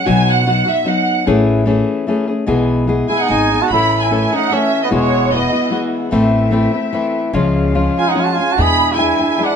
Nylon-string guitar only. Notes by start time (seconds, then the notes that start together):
0.05 B2 F#3 B3 D#4 F#4
0.46 F#3 B3 D#4 F#4
0.65 B3 D#4 F#4
0.85 F#3 B3 D#4 F#4
1.26 A2 E3 A3 C#4 G#4
1.66 E3 A3 C#4 G#4
2.07 E3 A3 C#4 G#4
2.27 A3 C#4 G#4
2.46 B2 E3 G#3 B3 G#4
2.87 E3 G#3 B3 G#4
3.09 G#3 B3 G#4
3.28 G#3 B3 D#4 G#4
3.51 G#3 B3 D#4 G#4
3.71 A2 E3 A3 C#4 A4
4.11 E3 A3 C#4 A4
4.32 A3 C#4 A4
4.50 E3 A3 C#4 A4
4.90 E2 B2 E3 G#3 B3 F#4
5.31 E3 G#3 B3 F#4
5.53 E3 G#3 B3 F#4
5.70 E3 G#3 B3 F#4
6.11 A2 E3 A3 C4 E4
6.51 E3 A3 C4 E4
6.73 A3 C4 E4
6.93 E3 A3 C4 E4
7.33 C#3 F3 G#3 C#4 F4
7.74 F3 G#3 C#4 F4
8.14 F3 G#3 C#4 F4
8.37 G#3 C#4 F4
8.57 E2 B2 E3 G#3 D4 E4
8.97 E3 G#3 D4 E4
9.19 E3 G#3 D4 E4
9.38 E3 G#3 D4 E4